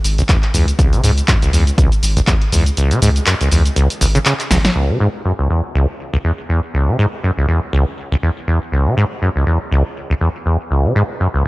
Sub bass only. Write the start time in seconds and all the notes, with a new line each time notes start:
0.04 G#1
0.54 C#2
1.04 C#2
1.53 C#2
2.03 G#1
2.52 C#2
3.02 C#2
3.52 C#2
4.01 G#1
4.51 G#1